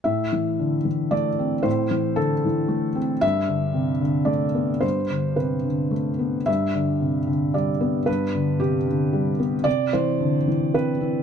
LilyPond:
<<
  \new Staff \with { instrumentName = "Felt piano" } { \time 3/4 \key a \minor \tempo 4 = 112 e''2 d''4 | c''4 a'4. r8 | e''2 d''4 | c''4 b'4 r4 |
e''2 d''4 | b'4 g'4. r8 | d''8 c''4. b'4 | }
  \new Staff \with { instrumentName = "Felt piano" } { \clef bass \time 3/4 \key a \minor a,8 e8 d8 e8 a8 c'8 | a,8 e8 d8 e8 a8 c'8 | g,8 d8 c8 d8 a8 b8 | g,8 d8 c8 d8 a8 b8 |
g,8 d8 c8 d8 g8 b8 | g,8 d8 c8 d8 g8 b8 | c8 e8 d8 e8 c'8 e'8 | }
>>